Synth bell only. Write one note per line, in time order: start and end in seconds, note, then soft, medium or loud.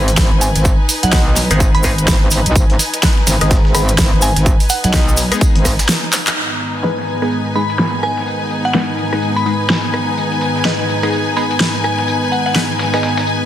0.00 0.32 B5 medium
0.41 0.61 G#5 medium
1.03 1.09 F#5 medium
1.13 1.22 F#5 medium
1.75 2.40 B5 loud
3.75 4.13 B5 medium
4.22 4.42 G#5 loud
4.70 4.79 F#5 medium
4.84 4.90 F#5 medium
7.55 7.94 B5 medium
8.03 8.23 G#5 medium
8.65 8.71 F#5 medium
8.74 8.84 F#5 medium
9.36 10.02 B5 medium
11.37 11.75 B5 medium
11.84 12.04 G#5 medium
12.32 12.41 F#5 medium
12.46 12.52 F#5 medium